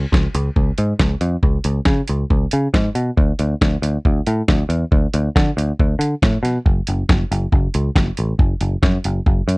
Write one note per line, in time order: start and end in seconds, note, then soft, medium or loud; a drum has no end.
0.12 0.26 C#2 medium
0.12 kick loud
0.12 snare loud
0.35 0.49 C#2 medium
0.35 closed hi-hat medium
0.56 0.70 C#2 medium
0.56 kick loud
0.78 0.92 G#2 medium
0.78 closed hi-hat medium
0.99 1.14 C#2 medium
0.99 kick loud
0.99 snare loud
1.21 1.35 F2 medium
1.21 closed hi-hat medium
1.43 1.58 C#2 medium
1.43 kick loud
1.64 1.79 C#2 medium
1.64 closed hi-hat medium
1.85 2.00 C#3 medium
1.85 kick loud
1.85 snare loud
2.08 2.23 C#2 medium
2.08 closed hi-hat medium
2.30 2.45 C#2 medium
2.30 kick loud
2.51 2.67 C#3 medium
2.51 closed hi-hat medium
2.74 2.88 G#2 medium
2.74 kick loud
2.74 snare loud
2.95 3.10 B2 medium
2.95 closed hi-hat medium
3.17 3.32 D2 medium
3.17 kick loud
3.39 3.54 D2 medium
3.39 closed hi-hat medium
3.61 3.76 D2 medium
3.61 kick loud
3.61 snare loud
3.82 3.97 D2 medium
3.82 closed hi-hat medium
4.05 4.20 D2 medium
4.05 kick loud
4.27 4.41 A2 medium
4.27 closed hi-hat medium
4.48 4.63 D2 medium
4.48 kick loud
4.48 snare loud
4.69 4.83 E2 medium
4.69 closed hi-hat medium
4.92 5.06 D2 medium
4.92 kick loud
5.14 5.28 D2 medium
5.14 closed hi-hat medium
5.36 5.50 D3 medium
5.36 kick loud
5.36 snare loud
5.57 5.71 D2 medium
5.57 closed hi-hat medium
5.79 5.94 D2 medium
5.79 kick loud
5.99 6.14 D3 medium
5.99 closed hi-hat medium
6.22 6.37 A2 medium
6.22 kick loud
6.22 snare loud
6.43 6.57 B2 medium
6.43 snare soft
6.43 closed hi-hat medium
6.66 6.80 F#1 medium
6.66 kick loud
6.87 7.02 F#1 medium
6.87 closed hi-hat medium
7.09 7.23 F#1 medium
7.09 kick loud
7.09 snare loud
7.32 7.46 F#1 medium
7.32 closed hi-hat loud
7.52 7.67 F#1 medium
7.52 kick loud
7.74 7.89 C#2 medium
7.74 closed hi-hat medium
7.95 8.10 F#1 medium
7.95 kick loud
7.95 snare loud
8.17 8.33 A1 medium
8.17 closed hi-hat medium
8.39 8.53 F#1 medium
8.39 kick loud
8.61 8.75 F#1 medium
8.61 closed hi-hat medium
8.83 8.97 F#2 medium
8.83 kick loud
8.83 snare loud
9.04 9.19 F#1 medium
9.04 closed hi-hat medium
9.26 9.41 F#1 medium
9.26 kick loud
9.48 9.58 F#2 medium
9.48 closed hi-hat medium